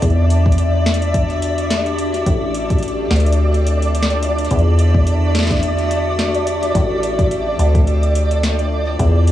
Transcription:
0.00 2.24 E2 medium
0.00 2.61 D4 medium
0.00 9.32 D5 medium
0.00 2.61 E5 medium
0.00 kick loud
0.00 closed hi-hat medium
0.10 closed hi-hat soft
0.30 closed hi-hat medium
0.46 kick loud
0.52 closed hi-hat medium
0.58 2.26 F#4 medium
0.58 closed hi-hat medium
0.86 snare loud
0.94 closed hi-hat medium
1.02 2.61 G4 medium
1.02 closed hi-hat medium
1.14 kick loud
1.14 closed hi-hat medium
1.30 closed hi-hat soft
1.42 closed hi-hat medium
1.58 closed hi-hat medium
1.70 snare loud
1.70 closed hi-hat medium
1.86 closed hi-hat soft
1.98 closed hi-hat medium
2.14 closed hi-hat medium
2.26 3.08 A1 medium
2.26 kick loud
2.26 closed hi-hat medium
2.54 closed hi-hat medium
2.70 kick loud
2.70 closed hi-hat soft
2.78 closed hi-hat soft
2.82 closed hi-hat medium
2.88 closed hi-hat soft
3.11 4.48 D2 medium
3.11 7.09 D4 medium
3.11 snare loud
3.11 closed hi-hat soft
3.16 closed hi-hat soft
3.20 closed hi-hat medium
3.26 closed hi-hat soft
3.32 7.09 E5 medium
3.32 closed hi-hat medium
3.54 closed hi-hat soft
3.67 closed hi-hat medium
3.82 closed hi-hat soft
3.95 closed hi-hat medium
4.03 snare loud
4.10 closed hi-hat soft
4.23 closed hi-hat medium
4.38 closed hi-hat soft
4.45 closed hi-hat soft
4.51 6.73 E2 medium
4.51 kick loud
4.51 closed hi-hat medium
4.59 6.75 F#4 medium
4.59 closed hi-hat soft
4.79 closed hi-hat medium
4.95 kick loud
5.07 closed hi-hat medium
5.35 snare loud
5.35 closed hi-hat medium
5.39 snare medium
5.43 7.10 G4 medium
5.43 snare medium
5.47 kick loud
5.47 snare medium
5.51 snare soft
5.51 closed hi-hat soft
5.54 snare soft
5.57 snare soft
5.60 snare soft
5.60 closed hi-hat medium
5.79 closed hi-hat soft
5.91 closed hi-hat medium
6.19 snare loud
6.19 closed hi-hat medium
6.35 closed hi-hat soft
6.47 closed hi-hat medium
6.63 closed hi-hat medium
6.75 7.57 A1 medium
6.75 kick loud
6.75 closed hi-hat medium
7.03 closed hi-hat medium
7.19 kick loud
7.19 closed hi-hat soft
7.31 closed hi-hat medium
7.59 8.97 D2 medium
7.59 9.32 D4 medium
7.59 closed hi-hat medium
7.75 kick loud
7.75 closed hi-hat soft
7.87 closed hi-hat medium
8.03 closed hi-hat soft
8.08 9.32 E5 medium
8.15 closed hi-hat medium
8.31 closed hi-hat soft
8.43 snare loud
8.43 closed hi-hat medium
8.59 closed hi-hat soft
8.99 9.32 E2 medium
8.99 kick loud
8.99 closed hi-hat medium
9.27 closed hi-hat medium

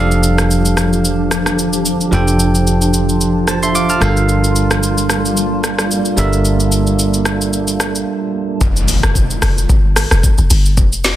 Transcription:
0.00 2.08 F1 medium
0.00 2.08 F3 medium
0.00 3.98 F3 medium
0.00 2.08 D4 medium
0.00 3.98 D4 medium
0.00 0.10 F4 medium
0.00 2.08 G4 medium
0.00 2.11 G4 medium
0.00 2.09 A4 medium
0.00 2.09 F5 medium
0.00 8.57 A5 medium
0.11 shaker medium
0.23 shaker medium
0.38 cross-stick medium
0.38 shaker soft
0.51 shaker medium
0.65 shaker medium
0.77 cross-stick medium
0.77 shaker medium
0.93 shaker medium
1.05 shaker medium
1.31 cross-stick medium
1.31 shaker loud
1.46 cross-stick medium
1.46 shaker medium
1.59 shaker medium
1.73 shaker medium
1.86 shaker medium
2.01 shaker soft
2.11 3.98 F1 medium
2.11 3.97 F3 medium
2.11 3.98 D4 medium
2.11 8.57 F4 medium
2.11 3.98 G4 medium
2.11 3.98 A4 medium
2.11 3.19 G5 medium
2.11 shaker medium
2.28 shaker soft
2.40 shaker medium
2.55 shaker soft
2.67 shaker medium
2.82 shaker medium
2.94 shaker medium
3.09 shaker soft
3.21 shaker medium
3.48 3.62 C5 medium
3.48 3.62 A5 medium
3.48 cross-stick medium
3.48 shaker loud
3.63 3.75 E5 medium
3.63 3.74 C6 medium
3.63 shaker medium
3.75 3.89 F5 medium
3.75 3.89 D6 medium
3.75 shaker medium
3.89 4.16 A5 medium
3.89 4.15 F6 medium
3.89 shaker medium
4.00 6.14 G1 medium
4.00 6.13 G3 medium
4.00 8.57 G3 medium
4.00 8.57 A#3 medium
4.00 6.14 D4 medium
4.00 6.14 A4 medium
4.00 6.14 A#4 medium
4.00 6.15 F5 medium
4.00 cross-stick loud
4.00 shaker medium
4.17 shaker soft
4.29 shaker medium
4.44 shaker medium
4.56 shaker medium
4.71 cross-stick medium
4.71 shaker soft
4.83 shaker medium
4.98 shaker medium
5.10 cross-stick medium
5.10 shaker medium
5.25 shaker soft
5.37 shaker medium
5.64 cross-stick medium
5.64 shaker loud
5.79 cross-stick medium
5.79 shaker medium
5.91 shaker medium
6.05 shaker medium
6.16 8.03 G1 medium
6.16 8.29 G3 medium
6.16 8.30 D4 medium
6.16 8.30 A4 medium
6.16 8.31 A#4 medium
6.16 8.31 E5 medium
6.16 shaker medium
6.33 shaker soft
6.45 shaker medium
6.60 shaker medium
6.72 shaker medium
6.87 shaker soft
6.99 shaker medium
7.14 shaker medium
7.25 cross-stick medium
7.25 shaker medium
7.41 shaker soft
7.53 shaker medium
7.68 shaker medium
7.80 cross-stick medium
7.80 shaker loud
7.95 shaker medium
8.61 8.98 F1 loud
8.61 kick loud
8.61 impact medium
8.61 shaker medium
8.76 shaker medium
8.88 open hi-hat medium
8.88 shaker medium
9.03 9.37 F1 loud
9.03 cross-stick loud
9.03 shaker medium
9.15 kick medium
9.15 shaker medium
9.30 shaker medium
9.42 9.66 F1 loud
9.42 cross-stick loud
9.42 open hi-hat soft
9.42 shaker medium
9.58 shaker medium
9.69 10.06 G1 loud
9.69 kick loud
9.69 shaker medium
9.96 cross-stick medium
9.96 open hi-hat medium
9.96 shaker loud
10.11 10.22 F1 medium
10.11 cross-stick medium
10.11 shaker medium
10.23 kick loud
10.23 shaker medium
10.38 10.49 F1 medium
10.38 shaker medium
10.50 10.79 G1 medium
10.50 open hi-hat medium
10.50 shaker loud
10.66 shaker soft
10.77 11.14 F1 loud
10.77 kick loud
10.77 shaker medium
10.93 shaker medium
11.04 snare medium
11.04 open hi-hat medium
11.04 shaker medium

